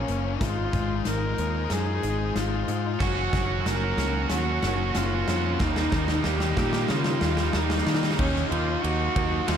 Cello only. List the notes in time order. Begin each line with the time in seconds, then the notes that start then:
Already playing: C#4
0.42 F4
1.09 A#4
1.72 G#4
2.36 F4
3.01 F#4
3.67 A#4
4.30 F#4
4.97 F4
5.61 D#4
6.26 G4
6.90 F4
7.55 D#4
8.20 C#4
8.51 F4
8.81 F#4
9.46 F4